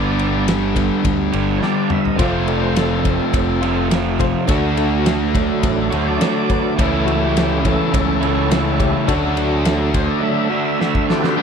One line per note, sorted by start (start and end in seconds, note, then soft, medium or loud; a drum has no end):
0.00 0.90 G1 medium
0.00 1.31 G2 medium
0.00 1.31 D3 medium
0.00 1.32 G3 loud
0.00 1.32 B3 medium
0.00 1.31 D4 medium
0.00 1.31 G4 loud
0.00 0.47 D5 loud
0.19 ride medium
0.48 snare loud
0.48 ride medium
0.74 1.13 D3 medium
0.74 1.14 G3 medium
0.74 1.14 B3 medium
0.74 kick medium
0.74 ride medium
1.05 1.30 D2 medium
1.05 kick loud
1.05 ride medium
1.32 1.59 G1 medium
1.32 1.59 G2 medium
1.32 1.60 D3 medium
1.32 1.61 G3 medium
1.32 1.61 B3 medium
1.32 1.60 D4 medium
1.32 1.60 G4 medium
1.32 ride medium
1.58 2.17 G2 medium
1.58 2.17 D3 medium
1.58 1.62 C#5 medium
1.62 2.18 G3 medium
1.62 2.18 B3 medium
1.62 2.18 D4 medium
1.62 2.19 G4 medium
1.62 1.90 D5 loud
1.62 snare medium
1.90 2.05 E5 medium
1.90 mid tom medium
2.05 2.18 D#5 medium
2.05 floor tom medium
2.15 3.18 F1 loud
2.15 3.60 F2 medium
2.15 3.61 C3 medium
2.15 2.99 F3 medium
2.15 3.61 F3 medium
2.15 3.00 A3 soft
2.15 2.77 C4 medium
2.15 2.42 F4 medium
2.15 2.42 A4 medium
2.15 2.42 C5 medium
2.15 2.32 D5 loud
2.15 kick loud
2.15 ride medium
2.20 3.63 A3 medium
2.20 3.62 C4 medium
2.20 3.60 F4 medium
2.20 cowbell medium
2.33 2.47 C5 medium
2.48 3.40 F4 medium
2.48 2.61 A4 medium
2.48 3.40 A4 medium
2.48 3.40 D5 medium
2.48 ride medium
2.62 2.75 C5 loud
2.76 3.88 C4 medium
2.76 3.89 A4 loud
2.76 snare loud
2.76 ride medium
2.76 cowbell medium
3.05 kick medium
3.05 ride medium
3.05 cowbell medium
3.33 4.33 F1 medium
3.33 kick loud
3.33 ride medium
3.33 cowbell medium
3.61 3.90 C3 medium
3.61 3.90 F3 medium
3.61 3.92 A3 medium
3.61 3.90 C4 medium
3.61 3.89 F4 medium
3.61 ride medium
3.65 3.89 F2 medium
3.90 4.46 F2 medium
3.90 4.47 C3 medium
3.90 4.47 F3 medium
3.90 4.48 A3 medium
3.90 4.48 C4 medium
3.90 4.48 F4 medium
3.90 snare loud
3.90 ride medium
3.90 cowbell medium
4.19 4.43 F4 medium
4.19 4.43 A4 medium
4.19 4.43 C5 loud
4.19 kick medium
4.19 ride medium
4.19 cowbell medium
4.47 5.48 D2 medium
4.47 5.90 D3 medium
4.47 5.93 A3 loud
4.47 4.72 D4 medium
4.47 5.91 D4 medium
4.47 4.72 F#4 medium
4.47 5.89 F#4 medium
4.47 4.72 A4 loud
4.47 kick loud
4.47 ride loud
4.47 cowbell loud
4.77 5.70 D4 medium
4.77 5.69 F#4 medium
4.77 5.69 A4 medium
4.77 ride medium
5.05 snare loud
5.05 ride loud
5.05 cowbell medium
5.34 6.74 F#3 medium
5.34 6.75 A3 medium
5.34 6.75 D4 medium
5.34 kick medium
5.34 ride medium
5.34 cowbell medium
5.63 5.89 A1 medium
5.63 5.79 E4 medium
5.63 kick loud
5.63 ride loud
5.63 cowbell medium
5.81 5.93 A4 medium
5.90 6.17 D2 loud
5.90 6.21 A3 medium
5.90 6.19 D4 medium
5.90 6.18 F#4 medium
5.90 ride medium
5.95 6.18 D3 medium
5.95 6.07 C5 medium
6.03 6.07 C#5 medium
6.08 6.91 D5 loud
6.19 6.76 D3 medium
6.19 6.78 A3 medium
6.19 6.77 D4 medium
6.19 snare loud
6.19 ride medium
6.19 cowbell medium
6.23 6.78 F#4 medium
6.50 6.73 D4 medium
6.50 6.73 F#4 medium
6.50 6.73 B4 medium
6.50 kick medium
6.50 ride medium
6.50 cowbell medium
6.76 7.78 C#2 loud
6.76 8.20 C#3 medium
6.76 7.60 E3 medium
6.76 8.20 E3 medium
6.76 7.59 A3 soft
6.76 8.21 A3 loud
6.76 7.60 C#4 medium
6.76 7.02 C#4 medium
6.76 7.01 E4 medium
6.76 7.01 A4 medium
6.76 kick loud
6.76 ride medium
6.76 cowbell loud
6.80 8.21 C#4 medium
6.80 8.19 E4 loud
6.94 7.21 A4 medium
7.06 7.99 C#4 medium
7.06 7.99 E4 medium
7.06 7.99 F#4 medium
7.06 ride medium
7.22 7.64 G4 medium
7.37 snare loud
7.37 ride medium
7.37 cowbell medium
7.65 7.91 E3 medium
7.65 7.92 A3 soft
7.65 9.34 C#4 loud
7.65 9.35 A4 loud
7.65 kick medium
7.65 ride medium
7.65 cowbell medium
7.94 8.93 C#2 medium
7.94 kick loud
7.94 ride medium
7.94 cowbell loud
8.20 8.48 C#3 medium
8.20 8.49 E3 medium
8.20 8.50 A3 medium
8.20 8.49 C#4 medium
8.20 8.48 E4 medium
8.20 ride medium
8.49 9.06 C#3 medium
8.49 9.07 E3 medium
8.49 9.07 A3 medium
8.49 9.08 C#4 medium
8.49 snare loud
8.49 ride medium
8.49 cowbell medium
8.54 9.08 E4 medium
8.79 9.02 C#4 medium
8.79 9.02 E4 medium
8.79 9.03 G4 loud
8.79 kick medium
8.79 ride medium
8.79 cowbell medium
9.07 10.08 D2 loud
9.07 10.50 D3 loud
9.07 9.90 F#3 medium
9.07 9.90 A3 soft
9.07 10.51 A3 medium
9.07 9.31 D4 medium
9.07 9.91 D4 medium
9.07 10.50 D4 loud
9.07 9.31 F#4 medium
9.07 9.31 A4 loud
9.07 kick loud
9.07 ride loud
9.07 cowbell loud
9.11 10.49 F#4 loud
9.37 10.30 D4 medium
9.37 10.30 F#4 medium
9.37 10.30 A4 medium
9.37 ride medium
9.65 snare loud
9.65 ride loud
9.65 cowbell medium
9.94 10.09 C5 loud
9.94 kick medium
9.94 ride medium
9.94 cowbell medium
10.11 10.24 D5 loud
10.19 10.48 F#3 soft
10.19 10.49 A3 soft
10.19 10.49 D4 medium
10.19 10.22 D#5 medium
10.23 11.07 E5 loud
10.50 10.79 D3 medium
10.50 10.79 A3 medium
10.50 10.79 D4 medium
10.50 10.78 F#4 medium
10.80 11.36 D3 medium
10.80 11.37 A3 medium
10.80 11.37 D4 medium
10.80 snare medium
10.84 11.38 F#4 medium
10.95 kick medium
11.06 11.29 C4 medium
11.06 11.30 D4 medium
11.06 11.36 F#4 loud
11.06 11.27 D5 loud
11.06 snare medium
11.10 11.34 D4 medium
11.10 11.31 E4 medium
11.10 11.33 F4 medium
11.10 11.34 F#4 medium
11.10 11.34 A4 medium
11.17 11.35 G4 medium
11.17 11.36 A4 medium
11.21 11.35 B4 medium
11.21 11.39 C5 medium
11.21 snare medium
11.28 11.40 D5 medium
11.28 11.41 E5 medium
11.33 11.42 G3 loud
11.33 11.42 D4 medium
11.33 11.42 G4 medium
11.33 11.42 B4 medium
11.33 11.42 F5 medium
11.33 11.42 G5 medium
11.38 11.42 B3 loud
11.38 11.42 D4 medium